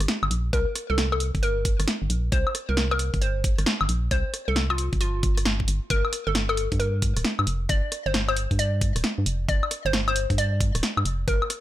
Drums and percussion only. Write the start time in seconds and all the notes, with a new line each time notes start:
0.00 cross-stick, closed hi-hat
0.08 snare, closed hi-hat
0.23 high woodblock
0.31 closed hi-hat
0.53 kick, closed hi-hat
0.76 cross-stick, closed hi-hat
0.98 snare, closed hi-hat
1.12 high woodblock
1.20 closed hi-hat
1.35 kick, closed hi-hat
1.43 closed hi-hat
1.65 kick, closed hi-hat
1.80 cross-stick, closed hi-hat
1.88 snare, closed hi-hat
2.10 closed hi-hat
2.32 kick, closed hi-hat
2.47 high woodblock
2.55 cross-stick, closed hi-hat
2.77 snare, closed hi-hat
2.91 high woodblock
2.99 cross-stick, closed hi-hat
3.14 kick, closed hi-hat
3.22 closed hi-hat
3.44 kick, closed hi-hat
3.58 cross-stick, closed hi-hat
3.66 snare, closed hi-hat
3.81 high woodblock
3.89 closed hi-hat
4.11 kick, closed hi-hat
4.34 cross-stick, closed hi-hat
4.56 snare, closed hi-hat
4.70 high woodblock
4.78 closed hi-hat
4.93 kick, closed hi-hat
5.01 closed hi-hat
5.23 kick, closed hi-hat
5.37 cross-stick, closed hi-hat
5.45 snare, closed hi-hat
5.60 kick
5.68 closed hi-hat
5.90 kick, closed hi-hat
6.05 high woodblock
6.13 cross-stick, closed hi-hat
6.35 snare, closed hi-hat
6.49 high woodblock
6.57 cross-stick, closed hi-hat
6.72 kick, closed hi-hat
6.80 closed hi-hat
7.02 kick, closed hi-hat
7.17 cross-stick, closed hi-hat
7.25 snare, closed hi-hat
7.39 high woodblock
7.47 closed hi-hat
7.69 kick, closed hi-hat
7.92 cross-stick, closed hi-hat
8.14 snare, closed hi-hat
8.29 high woodblock
8.37 closed hi-hat
8.51 kick, closed hi-hat
8.59 closed hi-hat
8.81 kick, closed hi-hat
8.96 cross-stick, closed hi-hat
9.04 snare, closed hi-hat
9.26 closed hi-hat
9.49 kick, closed hi-hat
9.63 high woodblock
9.71 cross-stick, closed hi-hat
9.93 snare, closed hi-hat
10.08 high woodblock
10.16 closed hi-hat
10.30 kick, closed hi-hat
10.38 closed hi-hat
10.61 kick, closed hi-hat
10.75 cross-stick, closed hi-hat
10.83 snare, closed hi-hat
10.97 high woodblock
11.05 closed hi-hat
11.28 kick, closed hi-hat
11.42 high woodblock
11.50 cross-stick, closed hi-hat